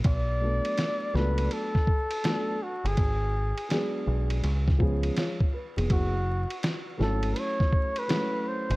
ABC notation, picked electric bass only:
X:1
M:4/4
L:1/16
Q:"Swing 16ths" 1/4=82
K:Bdor
V:1 name="Picked electric bass" clef=bass
B,,,3 z3 C,,2 z6 z =G,,, | G,,,3 z3 B,,,2 C,,4 z3 ^E,,, | F,,,3 z3 G,,,2 z6 z G,,, |]